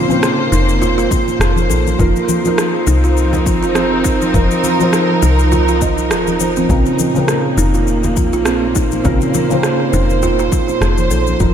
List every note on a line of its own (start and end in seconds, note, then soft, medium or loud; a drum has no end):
0.00 1.99 A#2 medium
0.00 0.08 C#3 medium
0.00 3.41 A#3 medium
0.00 0.10 C4 medium
0.00 2.00 A#4 medium
0.00 3.53 C5 medium
0.08 1.95 C#3 medium
0.08 1.96 C4 medium
0.08 high conga medium
0.08 shaker soft
0.12 1.97 C5 medium
0.23 cross-stick loud
0.23 muted conga soft
0.23 shaker soft
0.39 cross-stick soft
0.52 1.08 F1 medium
0.52 0.68 D#4 medium
0.52 shaker medium
0.69 shaker soft
0.82 0.96 F4 medium
0.82 low conga medium
0.82 shaker soft
0.98 1.10 F4 loud
0.98 shaker soft
1.11 1.21 F4 medium
1.11 kick loud
1.11 muted conga medium
1.11 low conga medium
1.11 shaker medium
1.28 muted conga soft
1.28 shaker soft
1.40 1.71 F1 medium
1.40 cross-stick loud
1.40 shaker soft
1.56 high conga medium
1.56 shaker soft
1.69 1.95 A#1 medium
1.69 1.98 A4 medium
1.69 high conga medium
1.69 shaker medium
1.87 high conga medium
1.87 shaker soft
1.98 2.13 F1 loud
1.98 2.41 F3 medium
1.98 6.70 F3 medium
1.98 2.41 D#4 medium
1.98 2.57 F4 medium
1.98 2.42 A#4 medium
1.98 kick loud
1.98 shaker soft
2.13 6.69 C4 medium
2.13 muted conga soft
2.13 shaker soft
2.29 high conga medium
2.29 shaker medium
2.38 8.59 D#4 medium
2.44 4.31 F3 medium
2.44 4.32 D#4 medium
2.44 4.33 A#4 medium
2.44 high conga medium
2.44 shaker soft
2.58 cross-stick loud
2.58 shaker soft
2.87 3.48 C2 medium
2.87 3.03 D#4 medium
2.87 shaker medium
3.03 3.16 F4 medium
3.03 7.80 A#4 medium
3.03 shaker soft
3.17 shaker soft
3.33 low conga loud
3.33 shaker soft
3.46 3.64 A#1 medium
3.46 3.56 F4 medium
3.46 kick loud
3.46 high conga medium
3.46 shaker medium
3.63 4.31 F1 medium
3.63 3.74 F4 loud
3.63 shaker soft
3.75 4.04 C4 medium
3.75 cross-stick medium
3.75 shaker soft
4.04 4.20 D#4 medium
4.04 kick loud
4.04 shaker medium
4.22 muted conga medium
4.22 shaker soft
4.33 4.48 F1 medium
4.33 4.76 F3 medium
4.33 4.76 D#4 medium
4.33 4.63 F4 medium
4.33 4.77 A#4 medium
4.33 kick loud
4.33 shaker soft
4.51 muted conga soft
4.51 shaker soft
4.64 4.73 F4 medium
4.64 high conga medium
4.64 shaker medium
4.79 6.66 F3 medium
4.79 6.67 D#4 medium
4.79 6.68 C5 medium
4.79 high conga medium
4.79 shaker soft
4.92 cross-stick medium
4.92 muted conga soft
4.92 shaker soft
5.09 cross-stick soft
5.22 6.12 C2 medium
5.22 5.38 D#4 medium
5.22 shaker medium
5.39 shaker soft
5.52 5.67 F4 loud
5.52 low conga medium
5.52 shaker soft
5.68 5.80 F4 medium
5.68 shaker soft
5.82 5.97 D#5 medium
5.82 kick loud
5.82 muted conga medium
5.82 low conga medium
5.82 shaker medium
5.98 muted conga soft
5.98 shaker soft
6.11 6.41 D#1 medium
6.11 cross-stick loud
6.11 shaker soft
6.27 high conga medium
6.27 shaker soft
6.40 6.65 F1 medium
6.40 6.50 C5 medium
6.40 high conga medium
6.40 shaker medium
6.56 6.69 C4 medium
6.56 high conga medium
6.56 shaker soft
6.69 6.84 A#1 loud
6.69 11.41 A#2 medium
6.69 7.11 C#3 medium
6.69 7.12 C4 medium
6.69 7.27 F4 medium
6.69 7.12 A#4 medium
6.69 kick loud
6.69 shaker soft
6.86 muted conga soft
6.86 shaker soft
6.97 11.54 A#3 medium
6.97 high conga medium
6.97 shaker medium
7.14 9.01 C#3 medium
7.14 9.02 C4 medium
7.14 high conga medium
7.14 shaker soft
7.18 9.03 A#4 medium
7.28 cross-stick medium
7.28 shaker soft
7.58 8.18 F1 medium
7.58 7.74 D#4 medium
7.58 shaker medium
7.74 7.87 F4 medium
7.74 shaker soft
7.87 shaker soft
8.04 low conga medium
8.04 shaker soft
8.17 8.34 D#2 medium
8.17 8.26 F4 medium
8.17 kick medium
8.17 high conga medium
8.17 shaker medium
8.33 9.02 A#1 medium
8.33 8.45 F4 medium
8.33 11.54 C5 medium
8.33 shaker soft
8.45 8.74 C4 medium
8.45 cross-stick medium
8.45 shaker soft
8.75 8.91 D#4 medium
8.75 kick loud
8.75 shaker medium
8.91 muted conga medium
8.91 shaker soft
9.04 9.19 A#1 medium
9.04 9.46 C#3 medium
9.04 9.47 C4 medium
9.04 9.33 F4 medium
9.04 9.47 A#4 medium
9.04 kick loud
9.04 shaker soft
9.21 muted conga soft
9.21 shaker soft
9.34 9.44 F4 medium
9.34 high conga medium
9.34 shaker medium
9.49 11.37 C#3 medium
9.49 11.38 C4 medium
9.49 11.38 C5 medium
9.49 high conga medium
9.49 shaker soft
9.63 cross-stick medium
9.63 muted conga soft
9.63 shaker soft
9.80 cross-stick soft
9.93 10.49 F1 medium
9.93 10.09 D#4 medium
9.93 shaker medium
10.10 shaker soft
10.22 10.38 F4 loud
10.22 low conga medium
10.22 shaker soft
10.39 10.51 F4 medium
10.39 shaker soft
10.52 10.62 F4 medium
10.52 kick loud
10.52 muted conga medium
10.52 low conga medium
10.52 shaker medium
10.69 muted conga soft
10.69 shaker soft
10.81 11.12 F1 medium
10.81 cross-stick medium
10.81 shaker soft
10.98 high conga medium
10.98 shaker soft
11.11 11.36 A#1 medium
11.11 11.39 A4 medium
11.11 high conga medium
11.11 shaker medium
11.27 high conga medium
11.27 shaker soft
11.40 11.54 F1 loud
11.40 11.54 F3 medium
11.40 11.54 D#4 medium
11.40 11.54 F4 medium
11.40 11.54 A#4 medium
11.40 kick loud
11.40 shaker soft